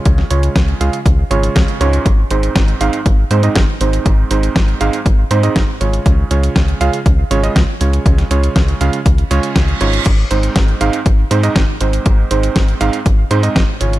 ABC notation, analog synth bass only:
X:1
M:4/4
L:1/8
Q:1/4=120
K:Ab
V:1 name="Analog synth bass" clef=bass
D,, D,, D,, D,, D,, A,,, D,, D,, | A,,, A,,, A,,, A,,, A,,, A,, A,,, A,,, | A,,, A,,, A,,, A,,, A,,, A,, A,,, A,,, | D,, D,, D,, D,, D,, A,,, D,, D,, |
D,, D,, D,, D,, D,, D,, D,, A,,, | A,,, A,,, A,,, A,,, A,,, A,, A,,, A,,, | A,,, A,,, A,,, A,,, A,,, A,, A,,, A,,, |]